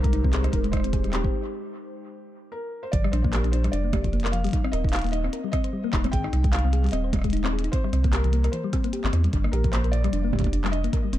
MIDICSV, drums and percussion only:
0, 0, Header, 1, 3, 480
1, 0, Start_track
1, 0, Tempo, 400000
1, 1597, Time_signature, 4, 2, 24, 8
1, 13421, End_track
2, 0, Start_track
2, 0, Title_t, "Percussion blips"
2, 4718, Note_on_c, 9, 64, 85
2, 4838, Note_off_c, 9, 64, 0
2, 7252, Note_on_c, 9, 64, 88
2, 7372, Note_off_c, 9, 64, 0
2, 8557, Note_on_c, 9, 64, 80
2, 8677, Note_off_c, 9, 64, 0
2, 12397, Note_on_c, 9, 64, 79
2, 12478, Note_off_c, 9, 64, 0
2, 12478, Note_on_c, 9, 64, 67
2, 12558, Note_off_c, 9, 64, 0
2, 12558, Note_on_c, 9, 64, 53
2, 12678, Note_off_c, 9, 64, 0
2, 13421, End_track
3, 0, Start_track
3, 0, Title_t, "Drums"
3, 52, Note_on_c, 9, 36, 109
3, 52, Note_on_c, 9, 42, 50
3, 157, Note_off_c, 9, 42, 0
3, 157, Note_on_c, 9, 42, 73
3, 172, Note_off_c, 9, 36, 0
3, 277, Note_off_c, 9, 42, 0
3, 292, Note_on_c, 9, 36, 100
3, 397, Note_on_c, 9, 39, 108
3, 397, Note_on_c, 9, 42, 75
3, 412, Note_off_c, 9, 36, 0
3, 517, Note_off_c, 9, 39, 0
3, 517, Note_off_c, 9, 42, 0
3, 532, Note_on_c, 9, 37, 56
3, 532, Note_on_c, 9, 42, 52
3, 637, Note_off_c, 9, 42, 0
3, 637, Note_on_c, 9, 42, 75
3, 638, Note_on_c, 9, 36, 113
3, 652, Note_off_c, 9, 37, 0
3, 757, Note_off_c, 9, 42, 0
3, 758, Note_off_c, 9, 36, 0
3, 772, Note_on_c, 9, 42, 36
3, 877, Note_off_c, 9, 42, 0
3, 877, Note_on_c, 9, 37, 76
3, 877, Note_on_c, 9, 42, 74
3, 878, Note_on_c, 9, 36, 98
3, 922, Note_off_c, 9, 37, 0
3, 922, Note_on_c, 9, 37, 65
3, 958, Note_off_c, 9, 37, 0
3, 958, Note_on_c, 9, 37, 52
3, 997, Note_off_c, 9, 42, 0
3, 998, Note_off_c, 9, 36, 0
3, 1012, Note_on_c, 9, 42, 50
3, 1078, Note_off_c, 9, 37, 0
3, 1118, Note_off_c, 9, 42, 0
3, 1118, Note_on_c, 9, 36, 109
3, 1118, Note_on_c, 9, 42, 78
3, 1238, Note_off_c, 9, 36, 0
3, 1238, Note_off_c, 9, 42, 0
3, 1252, Note_on_c, 9, 37, 23
3, 1252, Note_on_c, 9, 42, 35
3, 1322, Note_off_c, 9, 37, 0
3, 1322, Note_on_c, 9, 37, 33
3, 1357, Note_off_c, 9, 42, 0
3, 1357, Note_on_c, 9, 39, 111
3, 1357, Note_on_c, 9, 42, 76
3, 1402, Note_off_c, 9, 37, 0
3, 1402, Note_on_c, 9, 37, 41
3, 1477, Note_off_c, 9, 39, 0
3, 1477, Note_off_c, 9, 42, 0
3, 1492, Note_on_c, 9, 36, 102
3, 1522, Note_off_c, 9, 37, 0
3, 1612, Note_off_c, 9, 36, 0
3, 3518, Note_on_c, 9, 36, 121
3, 3518, Note_on_c, 9, 42, 86
3, 3638, Note_off_c, 9, 36, 0
3, 3638, Note_off_c, 9, 42, 0
3, 3652, Note_on_c, 9, 37, 81
3, 3758, Note_off_c, 9, 37, 0
3, 3758, Note_on_c, 9, 37, 55
3, 3758, Note_on_c, 9, 42, 81
3, 3878, Note_off_c, 9, 37, 0
3, 3878, Note_off_c, 9, 42, 0
3, 3892, Note_on_c, 9, 36, 119
3, 3997, Note_on_c, 9, 39, 118
3, 3997, Note_on_c, 9, 42, 83
3, 4012, Note_off_c, 9, 36, 0
3, 4117, Note_off_c, 9, 39, 0
3, 4117, Note_off_c, 9, 42, 0
3, 4132, Note_on_c, 9, 42, 39
3, 4237, Note_off_c, 9, 42, 0
3, 4237, Note_on_c, 9, 42, 85
3, 4357, Note_off_c, 9, 42, 0
3, 4373, Note_on_c, 9, 37, 55
3, 4373, Note_on_c, 9, 42, 57
3, 4478, Note_off_c, 9, 42, 0
3, 4478, Note_on_c, 9, 42, 82
3, 4493, Note_off_c, 9, 37, 0
3, 4598, Note_off_c, 9, 42, 0
3, 4718, Note_on_c, 9, 36, 104
3, 4718, Note_on_c, 9, 37, 84
3, 4718, Note_on_c, 9, 42, 84
3, 4838, Note_off_c, 9, 36, 0
3, 4838, Note_off_c, 9, 37, 0
3, 4838, Note_off_c, 9, 42, 0
3, 4852, Note_on_c, 9, 36, 82
3, 4853, Note_on_c, 9, 42, 55
3, 4958, Note_off_c, 9, 42, 0
3, 4958, Note_on_c, 9, 42, 38
3, 4972, Note_off_c, 9, 36, 0
3, 5038, Note_off_c, 9, 42, 0
3, 5038, Note_on_c, 9, 42, 51
3, 5093, Note_on_c, 9, 37, 54
3, 5093, Note_on_c, 9, 39, 116
3, 5119, Note_off_c, 9, 42, 0
3, 5119, Note_on_c, 9, 42, 65
3, 5199, Note_off_c, 9, 42, 0
3, 5199, Note_on_c, 9, 42, 82
3, 5213, Note_off_c, 9, 37, 0
3, 5213, Note_off_c, 9, 39, 0
3, 5319, Note_off_c, 9, 42, 0
3, 5333, Note_on_c, 9, 42, 51
3, 5360, Note_off_c, 9, 42, 0
3, 5360, Note_on_c, 9, 42, 42
3, 5387, Note_off_c, 9, 42, 0
3, 5387, Note_on_c, 9, 42, 34
3, 5413, Note_off_c, 9, 42, 0
3, 5413, Note_on_c, 9, 42, 28
3, 5438, Note_on_c, 9, 36, 124
3, 5439, Note_off_c, 9, 42, 0
3, 5439, Note_on_c, 9, 42, 83
3, 5558, Note_off_c, 9, 36, 0
3, 5559, Note_off_c, 9, 42, 0
3, 5573, Note_on_c, 9, 37, 81
3, 5679, Note_off_c, 9, 37, 0
3, 5679, Note_on_c, 9, 37, 52
3, 5679, Note_on_c, 9, 42, 85
3, 5799, Note_off_c, 9, 37, 0
3, 5799, Note_off_c, 9, 42, 0
3, 5812, Note_on_c, 9, 36, 121
3, 5866, Note_on_c, 9, 42, 54
3, 5918, Note_off_c, 9, 42, 0
3, 5918, Note_on_c, 9, 39, 122
3, 5918, Note_on_c, 9, 42, 78
3, 5932, Note_off_c, 9, 36, 0
3, 5952, Note_off_c, 9, 42, 0
3, 5952, Note_on_c, 9, 42, 66
3, 6019, Note_off_c, 9, 42, 0
3, 6019, Note_on_c, 9, 42, 44
3, 6038, Note_off_c, 9, 39, 0
3, 6053, Note_off_c, 9, 42, 0
3, 6053, Note_on_c, 9, 42, 38
3, 6079, Note_off_c, 9, 42, 0
3, 6079, Note_on_c, 9, 42, 29
3, 6105, Note_off_c, 9, 42, 0
3, 6105, Note_on_c, 9, 42, 24
3, 6132, Note_off_c, 9, 42, 0
3, 6132, Note_on_c, 9, 42, 20
3, 6157, Note_off_c, 9, 42, 0
3, 6157, Note_on_c, 9, 42, 83
3, 6277, Note_off_c, 9, 42, 0
3, 6292, Note_on_c, 9, 37, 56
3, 6397, Note_on_c, 9, 42, 82
3, 6412, Note_off_c, 9, 37, 0
3, 6517, Note_off_c, 9, 42, 0
3, 6637, Note_on_c, 9, 36, 109
3, 6637, Note_on_c, 9, 37, 82
3, 6637, Note_on_c, 9, 42, 83
3, 6757, Note_off_c, 9, 36, 0
3, 6757, Note_off_c, 9, 37, 0
3, 6757, Note_off_c, 9, 42, 0
3, 6771, Note_on_c, 9, 42, 56
3, 6891, Note_off_c, 9, 42, 0
3, 7117, Note_on_c, 9, 36, 123
3, 7117, Note_on_c, 9, 37, 57
3, 7117, Note_on_c, 9, 39, 123
3, 7117, Note_on_c, 9, 42, 83
3, 7197, Note_off_c, 9, 37, 0
3, 7197, Note_on_c, 9, 37, 48
3, 7237, Note_off_c, 9, 36, 0
3, 7237, Note_off_c, 9, 39, 0
3, 7237, Note_off_c, 9, 42, 0
3, 7252, Note_on_c, 9, 42, 54
3, 7278, Note_off_c, 9, 37, 0
3, 7278, Note_on_c, 9, 37, 39
3, 7357, Note_off_c, 9, 42, 0
3, 7357, Note_on_c, 9, 36, 125
3, 7357, Note_on_c, 9, 42, 84
3, 7398, Note_off_c, 9, 37, 0
3, 7477, Note_off_c, 9, 36, 0
3, 7477, Note_off_c, 9, 42, 0
3, 7491, Note_on_c, 9, 37, 79
3, 7597, Note_off_c, 9, 37, 0
3, 7597, Note_on_c, 9, 37, 51
3, 7597, Note_on_c, 9, 42, 83
3, 7717, Note_off_c, 9, 37, 0
3, 7717, Note_off_c, 9, 42, 0
3, 7731, Note_on_c, 9, 36, 127
3, 7731, Note_on_c, 9, 42, 53
3, 7837, Note_off_c, 9, 42, 0
3, 7837, Note_on_c, 9, 39, 125
3, 7837, Note_on_c, 9, 42, 81
3, 7851, Note_off_c, 9, 36, 0
3, 7904, Note_off_c, 9, 42, 0
3, 7904, Note_on_c, 9, 42, 37
3, 7957, Note_off_c, 9, 39, 0
3, 8024, Note_off_c, 9, 42, 0
3, 8077, Note_on_c, 9, 42, 81
3, 8197, Note_off_c, 9, 42, 0
3, 8212, Note_on_c, 9, 42, 24
3, 8238, Note_off_c, 9, 42, 0
3, 8238, Note_on_c, 9, 42, 33
3, 8265, Note_off_c, 9, 42, 0
3, 8265, Note_on_c, 9, 42, 39
3, 8292, Note_off_c, 9, 42, 0
3, 8292, Note_on_c, 9, 42, 46
3, 8318, Note_off_c, 9, 42, 0
3, 8318, Note_on_c, 9, 37, 50
3, 8318, Note_on_c, 9, 42, 82
3, 8438, Note_off_c, 9, 37, 0
3, 8438, Note_off_c, 9, 42, 0
3, 8557, Note_on_c, 9, 36, 109
3, 8557, Note_on_c, 9, 37, 35
3, 8557, Note_on_c, 9, 42, 83
3, 8591, Note_off_c, 9, 37, 0
3, 8591, Note_on_c, 9, 37, 44
3, 8625, Note_off_c, 9, 37, 0
3, 8625, Note_on_c, 9, 37, 54
3, 8658, Note_off_c, 9, 37, 0
3, 8658, Note_on_c, 9, 37, 66
3, 8677, Note_off_c, 9, 36, 0
3, 8677, Note_off_c, 9, 42, 0
3, 8691, Note_on_c, 9, 36, 87
3, 8691, Note_on_c, 9, 42, 52
3, 8761, Note_off_c, 9, 42, 0
3, 8761, Note_on_c, 9, 42, 41
3, 8778, Note_off_c, 9, 37, 0
3, 8797, Note_off_c, 9, 42, 0
3, 8797, Note_on_c, 9, 42, 80
3, 8811, Note_off_c, 9, 36, 0
3, 8842, Note_off_c, 9, 42, 0
3, 8842, Note_on_c, 9, 42, 35
3, 8931, Note_on_c, 9, 37, 52
3, 8931, Note_on_c, 9, 39, 125
3, 8962, Note_off_c, 9, 42, 0
3, 9051, Note_off_c, 9, 37, 0
3, 9051, Note_off_c, 9, 39, 0
3, 9104, Note_on_c, 9, 42, 80
3, 9172, Note_off_c, 9, 42, 0
3, 9172, Note_on_c, 9, 42, 52
3, 9277, Note_off_c, 9, 42, 0
3, 9277, Note_on_c, 9, 36, 127
3, 9277, Note_on_c, 9, 42, 82
3, 9397, Note_off_c, 9, 36, 0
3, 9397, Note_off_c, 9, 42, 0
3, 9411, Note_on_c, 9, 37, 74
3, 9517, Note_off_c, 9, 37, 0
3, 9517, Note_on_c, 9, 37, 50
3, 9517, Note_on_c, 9, 42, 78
3, 9637, Note_off_c, 9, 37, 0
3, 9637, Note_off_c, 9, 42, 0
3, 9652, Note_on_c, 9, 36, 121
3, 9652, Note_on_c, 9, 42, 54
3, 9757, Note_off_c, 9, 42, 0
3, 9757, Note_on_c, 9, 39, 124
3, 9757, Note_on_c, 9, 42, 77
3, 9772, Note_off_c, 9, 36, 0
3, 9877, Note_off_c, 9, 39, 0
3, 9877, Note_off_c, 9, 42, 0
3, 9891, Note_on_c, 9, 42, 37
3, 9996, Note_off_c, 9, 42, 0
3, 9996, Note_on_c, 9, 42, 78
3, 10116, Note_off_c, 9, 42, 0
3, 10131, Note_on_c, 9, 37, 52
3, 10131, Note_on_c, 9, 42, 55
3, 10236, Note_off_c, 9, 42, 0
3, 10236, Note_on_c, 9, 42, 78
3, 10251, Note_off_c, 9, 37, 0
3, 10356, Note_off_c, 9, 42, 0
3, 10477, Note_on_c, 9, 36, 108
3, 10477, Note_on_c, 9, 37, 76
3, 10477, Note_on_c, 9, 42, 78
3, 10597, Note_off_c, 9, 36, 0
3, 10597, Note_off_c, 9, 37, 0
3, 10597, Note_off_c, 9, 42, 0
3, 10611, Note_on_c, 9, 42, 53
3, 10717, Note_off_c, 9, 42, 0
3, 10717, Note_on_c, 9, 42, 77
3, 10837, Note_off_c, 9, 42, 0
3, 10851, Note_on_c, 9, 39, 120
3, 10957, Note_on_c, 9, 37, 56
3, 10957, Note_on_c, 9, 42, 80
3, 10971, Note_off_c, 9, 39, 0
3, 11077, Note_off_c, 9, 37, 0
3, 11077, Note_off_c, 9, 42, 0
3, 11092, Note_on_c, 9, 42, 51
3, 11197, Note_off_c, 9, 42, 0
3, 11197, Note_on_c, 9, 36, 120
3, 11197, Note_on_c, 9, 42, 78
3, 11317, Note_off_c, 9, 36, 0
3, 11317, Note_off_c, 9, 42, 0
3, 11332, Note_on_c, 9, 37, 77
3, 11438, Note_off_c, 9, 37, 0
3, 11438, Note_on_c, 9, 37, 51
3, 11438, Note_on_c, 9, 42, 74
3, 11558, Note_off_c, 9, 37, 0
3, 11558, Note_off_c, 9, 42, 0
3, 11572, Note_on_c, 9, 36, 118
3, 11572, Note_on_c, 9, 42, 50
3, 11677, Note_off_c, 9, 42, 0
3, 11677, Note_on_c, 9, 39, 119
3, 11677, Note_on_c, 9, 42, 76
3, 11692, Note_off_c, 9, 36, 0
3, 11797, Note_off_c, 9, 39, 0
3, 11797, Note_off_c, 9, 42, 0
3, 11812, Note_on_c, 9, 42, 36
3, 11918, Note_off_c, 9, 42, 0
3, 11918, Note_on_c, 9, 42, 77
3, 12038, Note_off_c, 9, 42, 0
3, 12052, Note_on_c, 9, 37, 52
3, 12052, Note_on_c, 9, 42, 52
3, 12157, Note_off_c, 9, 42, 0
3, 12157, Note_on_c, 9, 42, 77
3, 12172, Note_off_c, 9, 37, 0
3, 12277, Note_off_c, 9, 42, 0
3, 12397, Note_on_c, 9, 36, 48
3, 12431, Note_off_c, 9, 36, 0
3, 12431, Note_on_c, 9, 36, 59
3, 12464, Note_off_c, 9, 36, 0
3, 12464, Note_on_c, 9, 36, 74
3, 12465, Note_on_c, 9, 42, 76
3, 12498, Note_off_c, 9, 36, 0
3, 12498, Note_on_c, 9, 36, 90
3, 12531, Note_off_c, 9, 36, 0
3, 12531, Note_on_c, 9, 36, 83
3, 12532, Note_off_c, 9, 42, 0
3, 12532, Note_on_c, 9, 42, 51
3, 12638, Note_off_c, 9, 42, 0
3, 12638, Note_on_c, 9, 42, 77
3, 12651, Note_off_c, 9, 36, 0
3, 12758, Note_off_c, 9, 42, 0
3, 12773, Note_on_c, 9, 37, 49
3, 12773, Note_on_c, 9, 39, 112
3, 12877, Note_on_c, 9, 42, 75
3, 12893, Note_off_c, 9, 37, 0
3, 12893, Note_off_c, 9, 39, 0
3, 12997, Note_off_c, 9, 42, 0
3, 13012, Note_on_c, 9, 42, 51
3, 13117, Note_on_c, 9, 36, 117
3, 13118, Note_off_c, 9, 42, 0
3, 13118, Note_on_c, 9, 42, 80
3, 13237, Note_off_c, 9, 36, 0
3, 13238, Note_off_c, 9, 42, 0
3, 13358, Note_on_c, 9, 37, 52
3, 13358, Note_on_c, 9, 42, 75
3, 13421, Note_off_c, 9, 37, 0
3, 13421, Note_off_c, 9, 42, 0
3, 13421, End_track
0, 0, End_of_file